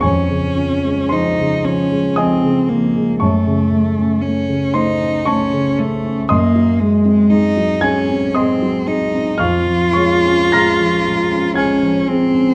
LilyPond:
<<
  \new Staff \with { instrumentName = "Cello" } { \time 3/4 \key des \major \tempo 4 = 58 des'4 ees'8 des'8 c'8 bes8 | a4 des'8 ees'8 des'8 a8 | bes8 aes8 ees'8 des'8 c'8 ees'8 | f'2 des'8 c'8 | }
  \new Staff \with { instrumentName = "Grand piano" } { \time 3/4 \key des \major <des'' aes'' des'''>4 <c'' c'''>4 <ees'' aes'' ees'''>4 | <des'' a'' des'''>4. <c'' c'''>8 <des'' a'' des'''>4 | <ees'' c''' ees'''>4. <aes'' aes'''>8 <ees'' c''' ees'''>8 r8 | <f'' des''' f'''>8 <des'' des'''>8 <bes'' f''' bes'''>4 <aes'' f''' aes'''>4 | }
  \new Staff \with { instrumentName = "Grand piano" } { \clef bass \time 3/4 \key des \major f,16 des16 f16 aes16 f16 des16 f16 aes16 f16 des16 f16 aes16 | ges,16 des16 a16 des'16 a16 des16 a16 des'16 a16 des16 a16 des'16 | ges,16 ges16 aes16 c'16 aes16 ges16 aes16 c'16 aes16 ges16 aes16 c'16 | f,16 f16 aes16 des'16 aes16 f16 aes16 des'16 aes16 f16 aes16 des'16 | }
>>